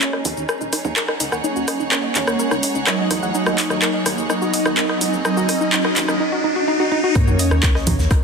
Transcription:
Already playing: analog polysynth A#3 C#4, string section C#4 D#4 F#4 G#4, supersaw synth C#5, riser
0.01 synth pluck A#4, clap, shaker
0.13 synth pluck D#5, cross-stick
0.25 analog synth bass D#2, synth pluck D#4, open hi-hat, low conga, shaker
0.37 analog synth bass D#2, shaker
0.49 synth pluck A#4, cross-stick, shaker
0.61 analog synth bass D#1, synth pluck D#4, shaker
0.73 synth pluck D#4, cross-stick, open hi-hat, shaker
0.79 string section C#5
0.85 analog synth bass D#2, synth pluck D#4, low conga, shaker
0.96 synth pluck A#4, clap, shaker
1.03 string section F#5
1.08 synth pluck D#5, cross-stick
1.20 analog synth bass C#2, synth pluck D#4, open hi-hat, shaker
1.32 analog synth bass D#2, synth pluck F#5, cross-stick, shaker
1.44 analog polysynth A#3 C#4, synth pluck D#4, supersaw synth C#5, shaker
1.56 analog synth bass D#2, synth pluck F#4, shaker
1.68 synth pluck D#5, cross-stick, open hi-hat, shaker
1.80 analog synth bass D#1, synth pluck D#4, shaker
1.92 synth pluck A#4, cross-stick, clap, shaker
2.04 synth pluck D#5
2.15 analog synth bass D#2, synth pluck D#4, clap, open hi-hat, low conga, shaker
2.27 analog synth bass D#2, cross-stick, shaker
2.39 synth pluck A#4, shaker
2.51 analog synth bass C#2, synth pluck D#4, cross-stick, shaker
2.63 synth pluck D#4, open hi-hat, shaker
2.75 analog synth bass C#2, synth pluck D#4, shaker
2.87 analog polysynth F#3 D#4, synth pluck A#4, supersaw synth D#5, cross-stick, clap, low conga, shaker
2.99 synth pluck D#5
3.11 analog synth bass E2, synth pluck D#4, cross-stick, open hi-hat, low conga, shaker
3.23 analog synth bass E2, synth pluck F#5, shaker
3.34 analog polysynth F#3 D#4, synth pluck D#4, supersaw synth D#5, shaker
3.46 analog synth bass D#2, synth pluck F#4, cross-stick, shaker
3.58 synth pluck D#5, clap, open hi-hat, shaker
3.70 analog synth bass D#2, synth pluck D#4, cross-stick, shaker
3.82 synth pluck A#4, clap, shaker
3.94 synth pluck D#5
4.06 analog synth bass D#2, synth pluck D#4, cross-stick, open hi-hat, low conga, shaker
4.18 analog synth bass D#2, shaker
4.30 analog polysynth F#3 D#4, synth pluck D#4, supersaw synth D#5, cross-stick, shaker
4.42 analog synth bass D#1, synth pluck F#4, shaker
4.54 synth pluck D#5, open hi-hat, shaker
4.66 analog synth bass D#2, synth pluck D#4, cross-stick, low conga, shaker
4.77 synth pluck A#4, clap, shaker
4.89 synth pluck D#5, cross-stick
5.01 analog synth bass C#2, synth pluck D#4, open hi-hat, shaker
5.13 analog synth bass D#2, shaker
5.25 analog polysynth F#3 D#4, synth pluck D#4, supersaw synth D#5, cross-stick, shaker
5.37 analog synth bass D#2, synth pluck F#4, shaker
5.49 synth pluck D#5, cross-stick, open hi-hat, shaker
5.61 analog synth bass D#1, synth pluck D#4, shaker
5.73 analog polysynth F#3 D#4, synth pluck D#4, supersaw synth D#5, clap, shaker
5.85 synth pluck F#4, cross-stick
5.96 analog synth bass D#2, synth pluck D#5, clap, open hi-hat, low conga, shaker
6.08 analog synth bass D#2, synth pluck D#4, cross-stick, shaker
6.20 synth pluck D#4, swell
6.32 synth pluck F#4
6.44 synth pluck D#4
6.56 synth pluck F#4
6.68 synth pluck D#4
6.80 synth pluck F#4
6.92 synth pluck D#4
7.04 synth pluck F#4
7.15 analog polysynth A#3 C#4, synth pluck D#4, supersaw synth C#5, kick, cross-stick, closed hi-hat, sub drop, shaker
7.27 analog synth bass D#2, synth pluck F#4, shaker
7.39 synth pluck D#5, closed hi-hat, open hi-hat, shaker
7.51 analog synth bass D#2, synth pluck D#4, cross-stick, shaker
7.63 synth pluck A#4, kick, snare, clap, closed hi-hat, shaker
7.75 synth pluck D#5, cross-stick, snare
7.87 analog synth bass D#2, synth pluck D#4, closed hi-hat, open hi-hat, low conga, shaker
7.99 analog synth bass D#2, snare, shaker
8.11 synth pluck A#4, kick, cross-stick, closed hi-hat, shaker

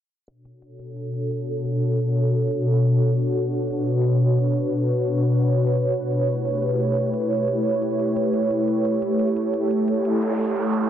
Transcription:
0.28 ambient pad B2 D4 F#4 A4 C#5, closed hi-hat
0.45 closed hi-hat
0.62 closed hi-hat
0.79 closed hi-hat
0.97 closed hi-hat
1.05 closed hi-hat
1.14 closed hi-hat
1.31 closed hi-hat
1.48 closed hi-hat
1.65 closed hi-hat
1.82 closed hi-hat
1.99 closed hi-hat
2.16 closed hi-hat
2.34 closed hi-hat
2.42 closed hi-hat
2.51 closed hi-hat
2.68 closed hi-hat
2.85 closed hi-hat
3.02 ambient pad B4, closed hi-hat
3.19 closed hi-hat
3.37 closed hi-hat
3.54 closed hi-hat
3.71 closed hi-hat
3.79 closed hi-hat
3.88 closed hi-hat
4.05 closed hi-hat
4.22 closed hi-hat
4.39 closed hi-hat
4.56 closed hi-hat
4.74 closed hi-hat
4.91 closed hi-hat
5.08 closed hi-hat
5.17 closed hi-hat
5.25 closed hi-hat
5.42 closed hi-hat
5.59 closed hi-hat
5.77 ambient pad A3 E4 G4, closed hi-hat
5.94 closed hi-hat
6.11 closed hi-hat
6.28 closed hi-hat
6.45 closed hi-hat
6.54 closed hi-hat
6.62 closed hi-hat
6.79 closed hi-hat
6.97 closed hi-hat
7.14 closed hi-hat
7.31 closed hi-hat
7.48 closed hi-hat
7.65 closed hi-hat
7.82 closed hi-hat
7.91 closed hi-hat
7.99 closed hi-hat
8.16 closed hi-hat
8.34 closed hi-hat
8.51 ambient pad A4, closed hi-hat
8.68 closed hi-hat
8.85 closed hi-hat
9.02 closed hi-hat
9.19 closed hi-hat
9.28 closed hi-hat
9.36 closed hi-hat
9.54 closed hi-hat
9.71 closed hi-hat
9.88 closed hi-hat, noise sweep
10.05 closed hi-hat
10.22 closed hi-hat
10.39 closed hi-hat
10.56 closed hi-hat
10.65 closed hi-hat
10.74 closed hi-hat

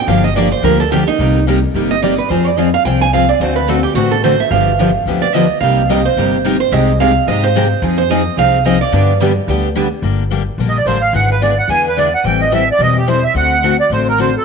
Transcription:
0.07 upright bass G1, steel-string acoustic guitar D3 F3 A#3 D4 G4 F5
0.24 steel-string acoustic guitar D#5
0.35 steel-string acoustic guitar D3 F3 A#3 D4 G4 D5
0.52 steel-string acoustic guitar C5
0.63 upright bass D2, steel-string acoustic guitar D3 F3 A#3 D4 G4 A#4
0.80 steel-string acoustic guitar A4
0.91 steel-string acoustic guitar D3 F3 A#3 D4 G4
1.08 steel-string acoustic guitar D#4
1.19 upright bass C2, steel-string acoustic guitar C3 G3 A#3 D#4 G4
1.47 steel-string acoustic guitar C3 G3 A#3 D#4 G4
1.74 upright bass G1, steel-string acoustic guitar C3 G3 A#3 D#4 G4
1.91 steel-string acoustic guitar D#5
2.02 steel-string acoustic guitar C3 G3 A#3 D#4 G4 D5
2.18 steel-string acoustic guitar B4
2.30 upright bass F2, steel-string acoustic guitar F3 C4 F4 G#4 C5
2.47 steel-string acoustic guitar D5
2.57 steel-string acoustic guitar F3 C4 F4 G#4 D#5
2.74 steel-string acoustic guitar F5
2.85 upright bass C2, steel-string acoustic guitar F3 C4 F4 G#4 G5
3.01 steel-string acoustic guitar G#5
3.13 steel-string acoustic guitar F3 C4 F4 G#4 F5
3.29 steel-string acoustic guitar D5
3.40 upright bass D2, steel-string acoustic guitar D3 A3 C4 F#4 A4 C5
3.56 steel-string acoustic guitar B4
3.69 steel-string acoustic guitar D3 A3 C4 F#4 A4
3.83 steel-string acoustic guitar G4
3.95 upright bass A1, steel-string acoustic guitar D3 A3 C4 F#4 A4
4.11 steel-string acoustic guitar A4
4.24 steel-string acoustic guitar D3 A3 C4 F#4 A4 C5
4.40 steel-string acoustic guitar E5
4.51 upright bass G1, steel-string acoustic guitar D3 F3 B3 D4 G4 F5
4.79 steel-string acoustic guitar D3 F3 B3 D4 G4
5.06 upright bass D2, steel-string acoustic guitar D3 F3 B3 D4 G4
5.22 steel-string acoustic guitar D5
5.33 steel-string acoustic guitar D3 F3 B3 D4 G4 D#5
5.61 upright bass C2, steel-string acoustic guitar C3 G3 A#3 D#4 G4 F5
5.89 steel-string acoustic guitar C3 G3 A#3 D#4 G4 D#5
6.05 steel-string acoustic guitar C5
6.16 upright bass G1, steel-string acoustic guitar C3 G3 A#3 D#4 G4
6.45 steel-string acoustic guitar C3 G3 A#3 D#4 G4
6.60 steel-string acoustic guitar C5
6.72 upright bass C2, steel-string acoustic guitar C3 G#3 C4 D#4 G4 D#5
7.00 steel-string acoustic guitar C3 G#3 C4 D#4 G4 F5
7.27 upright bass G#2, steel-string acoustic guitar C3 G#3 C4 D#4 G4 D#5
7.44 steel-string acoustic guitar C5
7.56 steel-string acoustic guitar C3 G#3 C4 D#4 G4
7.82 upright bass F2, steel-string acoustic guitar F3 C4 D#4 G#4
7.98 steel-string acoustic guitar C5
8.11 steel-string acoustic guitar F3 C4 D#4 G#4 D#5
8.37 upright bass C2, steel-string acoustic guitar F3 C4 D#4 G#4 F5
8.66 steel-string acoustic guitar F3 C4 D#4 G#4 D#5
8.81 steel-string acoustic guitar D5
8.92 upright bass G2, steel-string acoustic guitar D3 G3 B3 D4 G4
9.21 steel-string acoustic guitar D3 G3 B3 D4 G4
9.48 upright bass D2, steel-string acoustic guitar D3 G3 B3 D4 G4
9.75 steel-string acoustic guitar D3 G3 B3 D4 G4
10.02 upright bass G1, steel-string acoustic guitar D3 G3 A#3 D4 G4
10.31 steel-string acoustic guitar D3 G3 A#3 D4 G4
10.58 upright bass A#1, steel-string acoustic guitar D3 G3 A#3 D4 G4
10.69 accordion D#5
10.78 accordion D5
10.85 upright bass A1, steel-string acoustic guitar D3 G3 A#3 D4 G4, accordion C5
11.01 accordion F5
11.13 upright bass G#1, steel-string acoustic guitar D3 G#3 B3 E4 G#4, accordion F#5
11.31 accordion B4
11.42 steel-string acoustic guitar D3 G#3 B3 E4 G#4, accordion D5
11.58 accordion F#5
11.68 upright bass E2, steel-string acoustic guitar D3 G#3 B3 E4 G#4, accordion G#5
11.88 accordion B4
11.97 steel-string acoustic guitar D3 G#3 B3 E4 G#4, accordion D5
12.14 accordion F#5
12.24 upright bass A1, steel-string acoustic guitar E3 G3 C4 E4 A4, accordion G5
12.41 accordion D#5
12.51 steel-string acoustic guitar E3 G3 C4 E4 A4, accordion E5
12.71 accordion D5
12.79 upright bass E1, steel-string acoustic guitar E3 G3 C4 E4 A4, accordion D#5
12.98 accordion G4
13.07 steel-string acoustic guitar E3 G3 C4 E4 A4, accordion C5
13.24 accordion E5
13.34 upright bass D2, steel-string acoustic guitar D3 A3 C4 F#4 A4, accordion F#5
13.63 steel-string acoustic guitar D3 A3 C4 F#4 A4
13.80 accordion D5
13.90 upright bass A1, steel-string acoustic guitar D3 A3 C4 F#4 A4, accordion C5
14.09 accordion A#4
14.18 steel-string acoustic guitar D3 A3 C4 F#4 A4, accordion C5
14.37 accordion A4

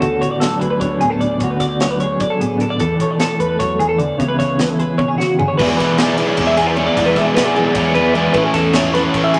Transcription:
Already playing: clean electric guitar B3
0.00 fingered electric bass D2, clean electric guitar D3 F#4 A4, kick, closed hi-hat
0.21 fingered electric bass A1, clean electric guitar C#5, kick, closed hi-hat
0.31 clean electric guitar D5
0.40 clean electric guitar F#3 D4 A4, snare, closed hi-hat
0.60 fingered electric bass D2, clean electric guitar G#4 B4, kick, closed hi-hat
0.71 clean electric guitar B4
0.80 fingered electric bass D2, clean electric guitar D4 C#5, kick, closed hi-hat
1.01 clean electric guitar A2 B3 G#4, closed hi-hat
1.10 clean electric guitar A4
1.21 clean electric guitar D4 D5, closed hi-hat
1.40 fingered electric bass D2, clean electric guitar D3 C#5, kick, closed hi-hat
1.44 clean electric guitar F#4
1.50 clean electric guitar B4
1.60 fingered electric bass D2, clean electric guitar D5, kick, snare, closed hi-hat
1.80 clean electric guitar F#3 D4 C#5, snare, closed hi-hat
1.91 clean electric guitar B4
2.00 clean electric guitar G#4 C#5, closed hi-hat
2.20 fingered electric bass D3, clean electric guitar D4 D5, kick, closed hi-hat
2.30 clean electric guitar A4
2.40 clean electric guitar A2 B3 G#4, closed hi-hat
2.58 clean electric guitar D4 A4, closed hi-hat
2.70 clean electric guitar D5
2.79 fingered electric bass E2, clean electric guitar E3 A4, kick, closed hi-hat
3.00 fingered electric bass B1, clean electric guitar C#5, kick, closed hi-hat
3.11 clean electric guitar D5
3.18 clean electric guitar A3 A4, snare, closed hi-hat
3.39 fingered electric bass E2, clean electric guitar A4 B4, kick, closed hi-hat
3.49 clean electric guitar B4
3.59 fingered electric bass E2, clean electric guitar F#3 C#5, kick, snare, closed hi-hat
3.79 clean electric guitar E3 G#4, closed hi-hat
3.89 clean electric guitar A4
3.98 clean electric guitar D3 D5, closed hi-hat
4.18 fingered electric bass C#2, clean electric guitar C#3 E3 B3 E4 G#4 C#5, kick, closed hi-hat
4.28 clean electric guitar B4
4.39 fingered electric bass C#2, clean electric guitar C#5, kick, snare, closed hi-hat
4.57 clean electric guitar E3 C#4 B4, snare, closed hi-hat
4.69 clean electric guitar E4 A4
4.79 clean electric guitar G#4 B4, closed hi-hat
4.98 clean electric guitar B2 C#5, fingered electric bass C#3, kick
5.08 clean electric guitar G#4
5.18 clean electric guitar C#3 F#4, snare
5.39 clean electric guitar D3 G#4, floor tom
5.48 clean electric guitar C#5
5.58 fingered electric bass E2, overdriven electric guitar E3 G#3 B3 E4 G#4 D5, clean electric guitar B4, kick, crash
5.68 clean electric guitar G#4
5.77 fingered electric bass B1, overdriven electric guitar B3 E4 G#4 D5, clean electric guitar B4, kick, snare, ride
5.98 overdriven electric guitar B3 E4 G#4 D5, clean electric guitar D5, snare, ride
6.17 overdriven electric guitar E3 G#3 B3 E4 G#4 D5, clean electric guitar B4, ride
6.27 clean electric guitar C#5
6.37 fingered electric bass E2, overdriven electric guitar B3 E4 G#4 D5, kick, ride
6.47 clean electric guitar E5
6.56 overdriven electric guitar B3 E4 G#4 D5, clean electric guitar G#4, snare, ride
6.67 clean electric guitar B4
6.76 overdriven electric guitar E3 G#3 B3 E4 G#4 D5, clean electric guitar C#5, ride
6.86 clean electric guitar D5
6.96 fingered electric bass E2, overdriven electric guitar E3 G#3 B3 E4 G#4 D5, kick, ride
7.06 clean electric guitar B4
7.16 fingered electric bass B1, overdriven electric guitar B3 E4 G#4 D5, clean electric guitar E5, kick, snare, ride
7.26 clean electric guitar D5
7.35 fingered electric bass B1, overdriven electric guitar B3 E4 G#4 D5, clean electric guitar B4, snare, ride
7.45 clean electric guitar G#4
7.56 overdriven electric guitar E3 G#3 B3 E4 G#4 D5, ride
7.64 clean electric guitar B4
7.74 fingered electric bass E2, overdriven electric guitar B3 E4 G#4 D5, clean electric guitar C#5, kick, ride
7.94 overdriven electric guitar B3 E4 G#4 D5, clean electric guitar B4, ride
8.14 overdriven electric guitar E3 G#3 B3 E4 G#4 D5, clean electric guitar D5, ride
8.23 clean electric guitar B4
8.33 fingered electric bass A1, overdriven electric guitar A3 C#4 E4 A4 C#5, clean electric guitar B4, kick, ride
8.44 clean electric guitar G#4
8.54 fingered electric bass E2, overdriven electric guitar E4 A4 C#5, clean electric guitar A4, kick, snare, ride
8.73 overdriven electric guitar C#4 E4 A4 C#5, clean electric guitar C#5, snare, ride
8.94 overdriven electric guitar A3 C#4 E4 A4 C#5, clean electric guitar B4, snare, ride
9.03 clean electric guitar C#5
9.14 fingered electric bass A1, overdriven electric guitar C#4 E4 A4 C#5, kick, ride
9.24 clean electric guitar E5
9.34 overdriven electric guitar E4 A4 C#5, clean electric guitar G#4, ride

